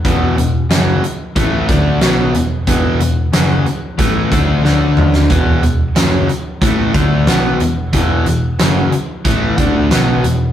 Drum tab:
HH |x-x-x-x-x-x-x-x-|x-x-x-x-x-x-----|x-x-x-x-x-x-x-x-|x-x-x-x-x-x-x-x-|
SD |----o-----o-o---|----o-----o-o--o|----o-------o---|----o-------o---|
T2 |----------------|--------------o-|----------------|----------------|
BD |o-------o-o-----|o-------o-o-----|o-------o-o-----|o-------o-o-----|